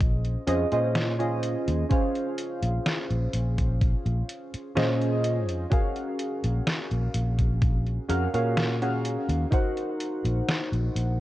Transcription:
Already playing: A#1 C#4 F4 G#4 C5 D#5
0.01 kick, closed hi-hat
0.25 closed hi-hat
0.47 F2 C#4 F4 G#4 C5 D#5, closed hi-hat
0.72 A#2 C#4 F4 G#4 C5 D#5, closed hi-hat
0.95 snare, closed hi-hat
1.19 C#4 F4 G#4 C5 D#5, closed hi-hat
1.43 closed hi-hat
1.68 D#2, closed hi-hat
1.89 C#4 F4 G#4 C5 F5, kick, closed hi-hat
2.15 closed hi-hat
2.38 closed hi-hat
2.63 A#1, closed hi-hat
2.86 snare, closed hi-hat
3.10 A#1, closed hi-hat
3.33 A#1, closed hi-hat
3.58 kick, closed hi-hat
3.81 kick, closed hi-hat
4.05 A#1, closed hi-hat
4.29 closed hi-hat
4.53 muted fretless electric bass stroke, closed hi-hat
4.75 A#2 C#4 F4 G#4 C5 D#5, snare, closed hi-hat
5.01 closed hi-hat
5.24 closed hi-hat
5.48 F2, closed hi-hat
5.70 C#4 F#4 G#4 A#4 F5, kick, closed hi-hat
5.96 closed hi-hat
6.19 closed hi-hat
6.44 A#1, closed hi-hat
6.67 snare, closed hi-hat
6.91 A#1, closed hi-hat
7.14 A#1, closed hi-hat
7.39 kick, closed hi-hat
7.62 kick, closed hi-hat
7.87 closed hi-hat
8.08 F2 C#4 F#4 G#4 A#4 F5, closed hi-hat
8.34 A#2 C#4 F#4 G#4 A#4 F5, closed hi-hat
8.57 snare, closed hi-hat
8.82 C#4 F#4 G#4 A#4 F5, closed hi-hat
9.05 closed hi-hat
9.29 D#2, closed hi-hat
9.51 D#4 F#4 A#4 C5 F#5, kick, closed hi-hat
9.78 closed hi-hat
10.01 closed hi-hat
10.25 A#1, closed hi-hat
10.49 snare, closed hi-hat
10.72 A#1, closed hi-hat
10.95 A#1, closed hi-hat

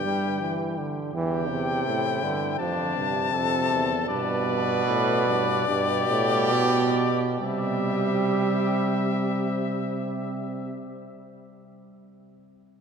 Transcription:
Already playing: G2 G4 G5
0.05 G3
0.41 E3
0.78 D3
1.13 E2 E3 G4 G5
1.50 E2 C3
1.86 A2 E4
2.23 G2 D3
2.59 F2 F3 D4 A5
2.96 G2 C3
3.33 F2 A4
3.71 E2
4.09 G2 B2 B4 D5
4.86 A2
5.26 G2
5.67 G2 B2 G4
6.09 A2
6.52 B2
7.40 C3 G3 G4 E5

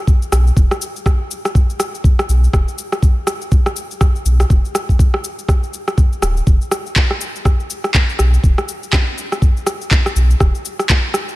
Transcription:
0.07 kick, shaker
0.22 shaker
0.32 B1, cross-stick, shaker
0.47 shaker
0.57 E1, kick, shaker
0.71 cross-stick, shaker
0.82 shaker
0.96 shaker
1.06 kick, cross-stick, shaker
1.31 shaker
1.45 cross-stick, shaker
1.55 kick, shaker
1.70 shaker
1.80 cross-stick, shaker
1.95 shaker
2.04 kick, shaker
2.19 cross-stick, shaker
2.29 B1, shaker
2.44 shaker
2.53 E1, kick, cross-stick, shaker
2.68 shaker
2.78 shaker
2.92 cross-stick, shaker
3.03 kick, shaker
3.27 cross-stick, shaker
3.42 shaker
3.52 kick, shaker
3.66 cross-stick, shaker
3.76 shaker
3.91 shaker
4.01 kick, cross-stick, shaker
4.16 shaker
4.25 B1, shaker
4.40 cross-stick, shaker
4.50 E1, kick, shaker
4.65 shaker
4.75 cross-stick, shaker
4.89 kick, shaker
4.99 kick, shaker
5.14 cross-stick
5.24 shaker
5.39 shaker
5.49 kick, cross-stick, shaker
5.63 shaker
5.73 shaker
5.88 cross-stick, shaker
5.98 kick, shaker
6.13 shaker
6.22 D1, cross-stick, shaker
6.37 shaker
6.47 E1, kick, shaker
6.61 shaker
6.71 cross-stick, shaker
6.86 shaker
6.96 kick, clap, shaker
7.11 cross-stick
7.21 shaker
7.36 shaker
7.45 kick, cross-stick, shaker
7.60 shaker
7.70 shaker
7.84 cross-stick, shaker
7.94 kick, clap, shaker
8.09 shaker
8.19 B1, cross-stick, shaker
8.34 shaker
8.44 E1, kick, shaker
8.58 cross-stick, shaker
8.68 shaker
8.83 shaker
8.93 kick, cross-stick, clap, shaker
9.18 shaker
9.32 cross-stick, shaker
9.42 kick, shaker
9.57 shaker
9.66 cross-stick, shaker
9.81 shaker
9.91 kick, clap, shaker
10.06 cross-stick, shaker
10.16 B1, shaker
10.30 shaker
10.40 E1, kick, cross-stick, shaker
10.55 shaker
10.65 shaker
10.79 cross-stick, shaker
10.90 kick, clap, shaker
11.14 cross-stick, shaker
11.29 shaker

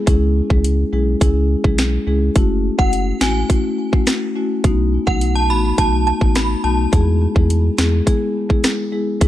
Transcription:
0.07 C#2 G#3 C#4 E4 G#4, kick, closed hi-hat
0.50 C#2 G#3 C#4 E4 G#4, kick
0.64 closed hi-hat
0.93 B1 G#3 C#4 E4 G#4
1.21 C#2 G#3 C#4 E4 G#4, kick, closed hi-hat
1.64 B1 G#3 C#4 E4 G#4, kick
1.78 finger snap, snare, closed hi-hat
2.07 C#2 G#3 C#4 E4 G#4
2.36 F#1 A3 C#4 E4 F#4, kick, closed hi-hat
2.78 F#1 A3 C#4 E4 F#4 F#5, kick
2.93 closed hi-hat
3.21 A1 A3 C#4 E4 F#4 G#5, finger snap, snare
3.50 A3 C#4 E4 F#4, kick, closed hi-hat
3.92 A3 C#4 E4 F#4, kick
4.07 finger snap, cross-stick, snare, closed hi-hat
4.36 A3 C#4 E4 F#4
4.64 B1 A3 B3 D#4 F#4, kick, closed hi-hat
5.07 B1 A3 B3 D#4 F#4 F#5, kick
5.21 closed hi-hat
5.36 A5
5.49 A1 A3 B3 D#4 F#4 B5
5.78 B1 A3 B3 D#4 F#4 A5, kick, closed hi-hat
6.07 A5
6.21 A1 A3 B3 D#4 F#4, kick
6.35 B5, finger snap, cross-stick, snare, closed hi-hat
6.64 B1 A3 B3 D#4 F#4 A5
6.92 E2 G#3 B3 E4 G#4, kick, closed hi-hat
7.35 E2 G#3 B3 E4 G#4, kick
7.50 closed hi-hat
7.78 E2 G#3 B3 E4 G#4, finger snap, snare
8.06 G#3 B3 E4 G#4, kick, closed hi-hat
8.49 G#3 B3 E4 G#4, kick
8.64 finger snap, cross-stick, snare, closed hi-hat
8.92 G#3 B3 E4 G#4
9.21 C#2 G#3 C#4 E4 G#4, kick, closed hi-hat

